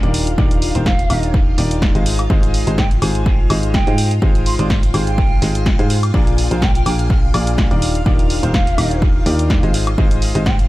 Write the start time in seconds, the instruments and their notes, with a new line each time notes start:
Already playing: string machine F4 F5
0.03 fm bass D#1, grand piano D#3 D4 D#4 G4 A#4 D5, closed hi-hat
0.14 open hi-hat
0.27 closed hi-hat
0.38 fm bass D#1, grand piano D#3 D4 D#4 G4 A#4 D5, kick
0.51 closed hi-hat
0.62 open hi-hat
0.75 fm bass D#1, grand piano D#3 D4 D#4 G4 A#4 C5, closed hi-hat
0.86 flute F5, kick, snare
0.99 closed hi-hat
1.10 fm bass D#1, grand piano D#3 D4 D#4 G4 A#4 F5, open hi-hat, high woodblock
1.23 closed hi-hat
1.34 kick
1.58 fm bass D#1, grand piano D#3 D4 D#4 G4 A#4 D5, open hi-hat
1.71 closed hi-hat
1.82 kick, snare
1.95 fm bass G#1, grand piano G#3 D#4 F4 G#4 C5 D#5, closed hi-hat
2.06 open hi-hat
2.19 closed hi-hat, high woodblock
2.30 fm bass G#1, grand piano G#3 D#4 F4 G#4 C5 D#5, kick
2.43 closed hi-hat
2.54 open hi-hat
2.67 fm bass G#1, grand piano G#3 D#4 F4 G#4 C5 D#5, closed hi-hat
2.78 flute G5, kick, snare
2.91 closed hi-hat
3.02 fm bass G#1, grand piano G#3 D#4 F4 G#4 C5 G#5, open hi-hat, high woodblock
3.15 closed hi-hat
3.26 kick
3.50 fm bass G#1, grand piano G#3 D#4 F4 G#4 C5 D#5, open hi-hat, high woodblock
3.63 closed hi-hat
3.74 flute G5, kick, snare
3.87 fm bass G#2, grand piano G#3 D#4 F4 G#4 C5 D#5, closed hi-hat
3.98 open hi-hat
4.11 closed hi-hat
4.22 fm bass G#1, grand piano G#3 D#4 F4 G#4 C5 D#5, kick
4.35 closed hi-hat
4.46 flute C6, open hi-hat
4.59 fm bass G#1, grand piano G#3 D#4 F4 G#4 C5 D5, flute C6, closed hi-hat
4.70 kick, snare
4.83 closed hi-hat
4.94 fm bass G#1, grand piano G#3 D#4 F4 G#4 C5 G5, open hi-hat, high woodblock
5.07 flute G5, closed hi-hat
5.18 kick
5.42 fm bass G#1, grand piano G#3 D#4 F4 G#4 C5 D#5, snare, open hi-hat
5.55 closed hi-hat
5.66 kick, snare
5.79 fm bass G#2, grand piano G#3 D#4 F4 G#4 C5 F5, closed hi-hat
5.90 open hi-hat
6.03 closed hi-hat, high woodblock
6.14 fm bass A#1, grand piano A#2 D4 F4 G#4 A#4 D5, kick
6.27 closed hi-hat
6.38 open hi-hat
6.51 fm bass A#1, grand piano A#2 D4 F4 G#4 A#4 C5, closed hi-hat
6.62 flute G5, kick, snare
6.75 flute G5, closed hi-hat
6.86 fm bass A#1, grand piano A#2 D4 F4 G#4 A#4 G5, flute G5, open hi-hat, high woodblock
6.99 closed hi-hat
7.10 kick
7.34 fm bass A#1, grand piano A#2 D4 F4 G#4 A#4 D5, open hi-hat, high woodblock
7.47 closed hi-hat
7.58 kick, snare
7.71 fm bass D#1, grand piano D#3 D4 D#4 G4 A#4 D5, closed hi-hat
7.82 open hi-hat
7.95 closed hi-hat
8.06 fm bass D#1, grand piano D#3 D4 D#4 G4 A#4 D5, kick
8.19 closed hi-hat
8.30 open hi-hat
8.43 fm bass D#1, grand piano D#3 D4 D#4 G4 A#4 C5, closed hi-hat
8.54 flute F5, kick, snare
8.67 closed hi-hat
8.78 fm bass D#1, grand piano D#3 D4 D#4 G4 A#4 F5, open hi-hat, high woodblock
8.91 closed hi-hat
9.02 kick
9.26 fm bass D#2, grand piano D#3 D4 D#4 G4 A#4 D5, open hi-hat
9.39 closed hi-hat
9.50 kick, snare
9.63 fm bass G#1, grand piano G#3 D#4 F4 G#4 C5 D#5, closed hi-hat
9.74 open hi-hat
9.87 closed hi-hat, high woodblock
9.98 fm bass G#1, grand piano G#3 D#4 F4 G#4 C5 D#5, kick
10.11 closed hi-hat
10.22 open hi-hat
10.35 fm bass G#1, grand piano G#3 D#4 F4 G#4 C5 D#5, closed hi-hat
10.46 flute G5, kick, snare
10.59 closed hi-hat